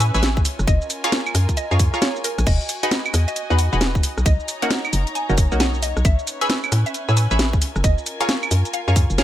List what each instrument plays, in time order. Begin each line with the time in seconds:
Already playing: fm bass A2, string section C#4 B4 G#5, synth stab G#4 B4 C#5 E5
0.00 synth pluck G#5, open hi-hat, shaker
0.14 fm bass A1, synth stab G#4 B4 C#5 E5, shaker
0.23 snare, closed hi-hat, shaker
0.37 kick, shaker
0.45 string section F4, open hi-hat, shaker
0.59 fm bass F#1, cross-stick, shaker
0.68 fm bass F#1, synth pluck D#5, kick, closed hi-hat, shaker
0.76 string section A#4
0.82 shaker
0.90 open hi-hat, shaker
1.04 synth stab F4 G#4 A#4 C#5, synth pluck F5, closed hi-hat, shaker
1.12 snare, closed hi-hat, shaker
1.26 claves, shaker
1.35 fm bass F#2, cross-stick, open hi-hat, shaker
1.49 kick, closed hi-hat, shaker
1.57 synth pluck D#5, closed hi-hat, shaker
1.71 fm bass F#2, synth stab F4 G#4 A#4 C#5, shaker
1.79 kick, open hi-hat, shaker
1.94 synth stab F4 G#4 A#4 C#5, cross-stick, shaker
2.02 synth pluck C#5, snare, closed hi-hat, shaker
2.16 shaker
2.24 synth pluck A#4, open hi-hat, shaker
2.38 fm bass A#1, cross-stick, closed hi-hat, shaker
2.47 fm bass E1, string section F#4, synth pluck D#5, kick, closed hi-hat, crash, shaker
2.61 shaker
2.69 open hi-hat, shaker
2.83 synth stab D#4 F#4 G#4 B4, closed hi-hat, shaker
2.88 string section D#5, snare, closed hi-hat, shaker
3.06 claves, shaker
3.14 fm bass E2, cross-stick, open hi-hat, shaker
3.28 synth pluck D#5, closed hi-hat, shaker
3.36 closed hi-hat, shaker
3.50 fm bass E2, synth stab D#4 F#4 G#4 B4, shaker
3.59 synth pluck F#5, open hi-hat, shaker
3.73 fm bass E1, synth stab D#4 F#4 G#4 B4, shaker
3.81 snare, closed hi-hat, shaker
3.95 kick, shaker
4.03 string section D#4, open hi-hat, shaker
4.18 fm bass B1, cross-stick, shaker
4.26 fm bass B1, synth pluck D#5, string section A#5, kick, closed hi-hat, shaker
4.40 shaker
4.45 string section C#5, open hi-hat, shaker
4.62 synth stab A#3 C#4 D#4 F#4, synth pluck F#5, closed hi-hat, shaker
4.71 snare, closed hi-hat, shaker
4.85 claves, shaker
4.93 fm bass F#1, open hi-hat, shaker
5.07 closed hi-hat, shaker
5.15 synth pluck G#5, closed hi-hat, shaker
5.29 fm bass F#1, synth stab A#3 C#4 D#4 F#4, shaker
5.38 kick, open hi-hat, shaker
5.52 fm bass B1, synth stab A#3 C#4 D#4 F#4, shaker
5.60 synth pluck G#5, snare, closed hi-hat, shaker
5.74 shaker
5.82 synth pluck D#5, open hi-hat, shaker
5.97 fm bass B1, cross-stick, shaker
6.05 fm bass A1, string section C#4, synth pluck E5, kick, closed hi-hat, shaker
6.19 shaker
6.24 string section B4, open hi-hat, shaker
6.41 synth stab G#4 B4 C#5 E5, closed hi-hat, shaker
6.50 snare, closed hi-hat, shaker
6.64 claves, shaker
6.72 fm bass A2, cross-stick, open hi-hat, shaker
6.76 string section G#5
6.86 synth pluck E5, closed hi-hat, shaker
6.94 closed hi-hat, shaker
7.09 fm bass A2, synth stab G#4 B4 C#5 E5, shaker
7.17 synth pluck G#5, open hi-hat, shaker
7.31 fm bass A1, synth stab G#4 B4 C#5 E5, shaker
7.39 snare, closed hi-hat, shaker
7.53 kick, shaker
7.61 string section F4, open hi-hat, shaker
7.67 string section A#4
7.76 fm bass F#1, cross-stick, shaker
7.84 fm bass F#1, synth pluck D#5, kick, closed hi-hat, shaker
7.98 shaker
8.06 open hi-hat, shaker
8.20 synth stab F4 G#4 A#4 C#5, synth pluck F5, closed hi-hat, shaker
8.29 snare, closed hi-hat, shaker
8.43 claves, shaker
8.51 fm bass F#2, open hi-hat, shaker
8.65 closed hi-hat, shaker
8.74 synth pluck F5, closed hi-hat, shaker
8.88 fm bass F#2, synth stab F4 G#4 A#4 C#5, shaker
8.96 kick, open hi-hat, shaker
9.10 fm bass F#1, shaker
9.18 synth stab F4 G#4 A#4 F5, synth pluck C#5, snare, closed hi-hat, shaker